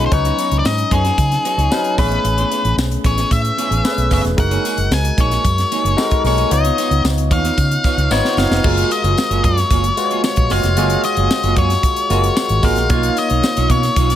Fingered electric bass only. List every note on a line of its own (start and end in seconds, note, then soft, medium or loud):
0.12 0.30 C#2 loud
0.51 0.61 C#2 medium
0.65 0.83 G#2 medium
0.91 1.10 F#2 medium
1.18 1.36 C#3 loud
1.58 1.67 C#2 medium
1.98 2.16 A1 loud
2.24 2.43 A1 medium
2.65 2.74 A1 medium
2.77 2.96 B1 medium
3.04 3.23 A1 medium
3.31 3.49 A2 loud
3.71 3.80 A1 medium
3.98 4.07 B1 medium
4.11 4.20 F#1 medium
4.25 4.34 E1 loud
4.38 4.56 F#1 loud
4.78 4.87 F#1 medium
4.91 5.09 C#2 loud
5.18 5.36 A#1 medium
5.45 5.63 F#2 loud
5.84 5.93 F#1 medium
6.24 6.42 B1 medium
6.51 6.69 C#2 loud
6.91 7.00 C#2 medium
7.04 7.31 C#2 medium
7.31 7.49 D#2 medium
7.58 7.76 C#3 loud
7.97 8.06 C#2 loud
8.10 8.20 G#1 loud
8.37 8.46 F#1 loud
8.50 8.60 F1 medium
8.64 8.82 F#1 loud
9.04 9.13 F#1 loud
9.30 9.39 F#1 medium
9.44 9.62 F#2 loud
9.71 9.89 F#1 medium
10.37 10.46 A#1 medium
10.51 10.60 F#1 loud
10.64 10.77 F1 loud
10.77 10.95 F#1 loud
11.17 11.26 F#1 medium
11.43 11.52 F#1 loud
11.56 11.75 F#2 loud
12.10 12.28 F#1 loud
12.50 12.59 G#1 loud
12.63 12.77 G#1 medium
12.77 12.86 A#1 medium
12.90 13.08 B1 loud
13.30 13.39 B1 loud
13.57 13.66 B1 loud
13.70 13.88 B2 loud
13.96 14.15 B1 medium